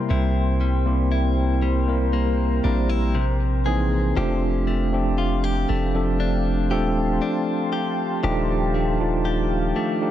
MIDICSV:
0, 0, Header, 1, 5, 480
1, 0, Start_track
1, 0, Tempo, 1016949
1, 47, Time_signature, 4, 2, 24, 8
1, 4771, End_track
2, 0, Start_track
2, 0, Title_t, "Ambient pad"
2, 0, Program_c, 0, 92
2, 0, Note_on_c, 0, 70, 80
2, 0, Note_on_c, 0, 72, 73
2, 0, Note_on_c, 0, 79, 74
2, 0, Note_on_c, 0, 84, 85
2, 748, Note_off_c, 0, 84, 0
2, 768, Note_on_c, 0, 82, 89
2, 1469, Note_off_c, 0, 79, 0
2, 1480, Note_off_c, 0, 82, 0
2, 1488, Note_on_c, 0, 80, 71
2, 1488, Note_on_c, 0, 84, 82
2, 1948, Note_off_c, 0, 70, 0
2, 1949, Note_off_c, 0, 72, 0
2, 1963, Note_off_c, 0, 80, 0
2, 1963, Note_off_c, 0, 84, 0
2, 1966, Note_on_c, 0, 77, 69
2, 1966, Note_on_c, 0, 79, 74
2, 1966, Note_on_c, 0, 81, 80
2, 1966, Note_on_c, 0, 86, 86
2, 2917, Note_off_c, 0, 86, 0
2, 2926, Note_on_c, 0, 84, 86
2, 3877, Note_off_c, 0, 84, 0
2, 3887, Note_on_c, 0, 86, 85
2, 4771, Note_off_c, 0, 77, 0
2, 4771, Note_off_c, 0, 79, 0
2, 4771, Note_off_c, 0, 81, 0
2, 4771, Note_off_c, 0, 86, 0
2, 4771, End_track
3, 0, Start_track
3, 0, Title_t, "Clean electric guitar"
3, 0, Program_c, 1, 27
3, 0, Note_on_c, 1, 55, 57
3, 0, Note_on_c, 1, 60, 62
3, 47, Note_on_c, 1, 48, 85
3, 50, Note_on_c, 1, 64, 72
3, 285, Note_off_c, 1, 55, 0
3, 287, Note_on_c, 1, 55, 57
3, 525, Note_off_c, 1, 64, 0
3, 527, Note_on_c, 1, 64, 65
3, 761, Note_off_c, 1, 55, 0
3, 766, Note_on_c, 1, 55, 62
3, 1004, Note_off_c, 1, 60, 0
3, 1006, Note_on_c, 1, 58, 67
3, 1244, Note_off_c, 1, 64, 0
3, 1246, Note_on_c, 1, 62, 65
3, 1366, Note_off_c, 1, 62, 0
3, 1366, Note_on_c, 1, 64, 61
3, 1480, Note_off_c, 1, 48, 0
3, 1486, Note_on_c, 1, 48, 77
3, 1534, Note_off_c, 1, 58, 0
3, 1535, Note_off_c, 1, 55, 0
3, 1535, Note_off_c, 1, 64, 0
3, 1726, Note_on_c, 1, 68, 71
3, 1966, Note_on_c, 1, 53, 86
3, 1967, Note_off_c, 1, 68, 0
3, 1969, Note_on_c, 1, 67, 70
3, 2014, Note_off_c, 1, 48, 0
3, 2205, Note_on_c, 1, 57, 60
3, 2443, Note_off_c, 1, 67, 0
3, 2445, Note_on_c, 1, 65, 67
3, 2566, Note_off_c, 1, 65, 0
3, 2566, Note_on_c, 1, 67, 56
3, 2684, Note_off_c, 1, 57, 0
3, 2686, Note_on_c, 1, 57, 60
3, 2926, Note_on_c, 1, 62, 65
3, 3161, Note_off_c, 1, 67, 0
3, 3167, Note_on_c, 1, 67, 64
3, 3404, Note_off_c, 1, 62, 0
3, 3406, Note_on_c, 1, 62, 61
3, 3645, Note_off_c, 1, 67, 0
3, 3646, Note_on_c, 1, 67, 65
3, 3885, Note_off_c, 1, 53, 0
3, 3887, Note_on_c, 1, 51, 82
3, 3888, Note_off_c, 1, 67, 0
3, 3890, Note_on_c, 1, 67, 76
3, 4125, Note_off_c, 1, 57, 0
3, 4127, Note_on_c, 1, 57, 59
3, 4364, Note_off_c, 1, 67, 0
3, 4366, Note_on_c, 1, 67, 70
3, 4605, Note_off_c, 1, 57, 0
3, 4607, Note_on_c, 1, 57, 62
3, 4771, Note_off_c, 1, 51, 0
3, 4771, Note_off_c, 1, 57, 0
3, 4771, Note_off_c, 1, 62, 0
3, 4771, Note_off_c, 1, 67, 0
3, 4771, End_track
4, 0, Start_track
4, 0, Title_t, "Tine electric piano"
4, 0, Program_c, 2, 4
4, 0, Control_c, 2, 64, 127
4, 0, Note_on_c, 2, 55, 91
4, 0, Note_on_c, 2, 58, 83
4, 0, Note_on_c, 2, 60, 83
4, 0, Note_on_c, 2, 64, 87
4, 0, Note_on_c, 2, 70, 107
4, 285, Note_off_c, 2, 55, 0
4, 286, Note_off_c, 2, 58, 0
4, 287, Note_off_c, 2, 60, 0
4, 288, Note_off_c, 2, 64, 0
4, 289, Note_off_c, 2, 70, 0
4, 403, Note_on_c, 2, 55, 79
4, 405, Note_on_c, 2, 58, 72
4, 407, Note_on_c, 2, 60, 70
4, 409, Note_on_c, 2, 64, 68
4, 411, Note_on_c, 2, 67, 84
4, 708, Note_off_c, 2, 55, 0
4, 709, Note_off_c, 2, 58, 0
4, 710, Note_off_c, 2, 60, 0
4, 711, Note_off_c, 2, 64, 0
4, 712, Note_off_c, 2, 67, 0
4, 885, Note_on_c, 2, 55, 79
4, 886, Note_on_c, 2, 58, 72
4, 889, Note_on_c, 2, 60, 68
4, 890, Note_on_c, 2, 64, 73
4, 892, Note_on_c, 2, 70, 85
4, 1113, Note_off_c, 2, 55, 0
4, 1114, Note_off_c, 2, 58, 0
4, 1115, Note_off_c, 2, 60, 0
4, 1116, Note_off_c, 2, 64, 0
4, 1117, Note_off_c, 2, 70, 0
4, 1245, Note_on_c, 2, 55, 77
4, 1247, Note_on_c, 2, 58, 70
4, 1249, Note_on_c, 2, 60, 73
4, 1250, Note_on_c, 2, 64, 71
4, 1253, Note_on_c, 2, 70, 85
4, 1486, Note_off_c, 2, 55, 0
4, 1487, Note_off_c, 2, 58, 0
4, 1488, Note_off_c, 2, 60, 0
4, 1489, Note_off_c, 2, 64, 0
4, 1490, Note_off_c, 2, 70, 0
4, 1492, Control_c, 2, 64, 0
4, 1570, Control_c, 2, 64, 127
4, 1724, Note_on_c, 2, 52, 91
4, 1727, Note_on_c, 2, 58, 79
4, 1729, Note_on_c, 2, 60, 81
4, 1731, Note_on_c, 2, 63, 82
4, 1732, Note_on_c, 2, 68, 98
4, 1877, Note_off_c, 2, 52, 0
4, 1878, Note_off_c, 2, 58, 0
4, 1879, Note_off_c, 2, 60, 0
4, 1880, Note_off_c, 2, 63, 0
4, 1881, Note_off_c, 2, 68, 0
4, 1964, Note_on_c, 2, 53, 108
4, 1966, Note_on_c, 2, 57, 102
4, 1967, Note_on_c, 2, 60, 97
4, 1970, Note_on_c, 2, 62, 96
4, 1972, Note_on_c, 2, 67, 118
4, 1973, Control_c, 2, 64, 0
4, 2055, Control_c, 2, 64, 127
4, 2193, Note_off_c, 2, 53, 0
4, 2194, Note_off_c, 2, 57, 0
4, 2195, Note_off_c, 2, 60, 0
4, 2196, Note_off_c, 2, 62, 0
4, 2197, Note_off_c, 2, 67, 0
4, 2324, Note_on_c, 2, 53, 82
4, 2326, Note_on_c, 2, 57, 73
4, 2328, Note_on_c, 2, 60, 76
4, 2330, Note_on_c, 2, 62, 70
4, 2332, Note_on_c, 2, 67, 83
4, 2629, Note_off_c, 2, 53, 0
4, 2630, Note_off_c, 2, 57, 0
4, 2631, Note_off_c, 2, 60, 0
4, 2632, Note_off_c, 2, 62, 0
4, 2633, Note_off_c, 2, 67, 0
4, 2804, Note_on_c, 2, 53, 75
4, 2806, Note_on_c, 2, 57, 70
4, 2808, Note_on_c, 2, 60, 73
4, 2810, Note_on_c, 2, 62, 69
4, 2812, Note_on_c, 2, 69, 86
4, 3033, Note_off_c, 2, 53, 0
4, 3034, Note_off_c, 2, 57, 0
4, 3035, Note_off_c, 2, 60, 0
4, 3036, Note_off_c, 2, 62, 0
4, 3037, Note_off_c, 2, 69, 0
4, 3164, Note_on_c, 2, 53, 84
4, 3166, Note_on_c, 2, 57, 78
4, 3168, Note_on_c, 2, 60, 78
4, 3169, Note_on_c, 2, 62, 77
4, 3172, Note_on_c, 2, 69, 93
4, 3620, Note_off_c, 2, 53, 0
4, 3622, Note_off_c, 2, 57, 0
4, 3622, Note_off_c, 2, 60, 0
4, 3623, Note_off_c, 2, 62, 0
4, 3624, Note_off_c, 2, 69, 0
4, 3884, Note_on_c, 2, 53, 108
4, 3885, Note_on_c, 2, 57, 99
4, 3888, Note_on_c, 2, 62, 98
4, 3890, Note_on_c, 2, 63, 98
4, 3891, Note_on_c, 2, 67, 124
4, 3893, Control_c, 2, 64, 0
4, 3975, Control_c, 2, 64, 127
4, 4113, Note_off_c, 2, 53, 0
4, 4114, Note_off_c, 2, 57, 0
4, 4115, Note_off_c, 2, 62, 0
4, 4116, Note_off_c, 2, 63, 0
4, 4116, Note_off_c, 2, 67, 0
4, 4243, Note_on_c, 2, 53, 86
4, 4246, Note_on_c, 2, 57, 72
4, 4248, Note_on_c, 2, 62, 75
4, 4249, Note_on_c, 2, 63, 78
4, 4251, Note_on_c, 2, 65, 88
4, 4548, Note_off_c, 2, 53, 0
4, 4549, Note_off_c, 2, 57, 0
4, 4551, Note_off_c, 2, 62, 0
4, 4551, Note_off_c, 2, 63, 0
4, 4552, Note_off_c, 2, 65, 0
4, 4724, Note_on_c, 2, 53, 75
4, 4726, Note_on_c, 2, 57, 76
4, 4728, Note_on_c, 2, 62, 77
4, 4730, Note_on_c, 2, 63, 75
4, 4732, Note_on_c, 2, 67, 90
4, 4771, Note_off_c, 2, 53, 0
4, 4771, Note_off_c, 2, 57, 0
4, 4771, Note_off_c, 2, 62, 0
4, 4771, Note_off_c, 2, 63, 0
4, 4771, Note_off_c, 2, 67, 0
4, 4771, End_track
5, 0, Start_track
5, 0, Title_t, "808-style bass"
5, 0, Program_c, 3, 38
5, 48, Note_on_c, 3, 36, 108
5, 1229, Note_off_c, 3, 36, 0
5, 1248, Note_on_c, 3, 34, 99
5, 1949, Note_off_c, 3, 34, 0
5, 1967, Note_on_c, 3, 29, 111
5, 2668, Note_off_c, 3, 29, 0
5, 2688, Note_on_c, 3, 29, 104
5, 3169, Note_on_c, 3, 27, 96
5, 3176, Note_off_c, 3, 29, 0
5, 3396, Note_off_c, 3, 27, 0
5, 3888, Note_on_c, 3, 27, 104
5, 4589, Note_off_c, 3, 27, 0
5, 4771, End_track
0, 0, End_of_file